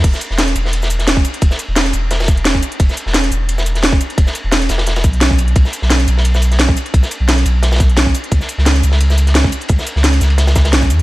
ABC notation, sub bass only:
X:1
M:4/4
L:1/16
Q:"Swing 16ths" 1/4=174
K:C#m
V:1 name="Sub bass" clef=bass
E,,, z2 E,,,3 E,,,8 z2 | E,,, z2 E,,,3 E,,,8 z2 | E,,, z2 E,,,3 E,,,8 z2 | E,,, z2 E,,,3 E,,,4 B,,,6 |
B,,, z2 B,,,3 B,,,8 z2 | B,,, z2 B,,,3 B,,,8 z2 | C,, z2 C,,3 C,,8 z2 | C,, z2 C,,3 C,,6 B,,,2 E,,2 |]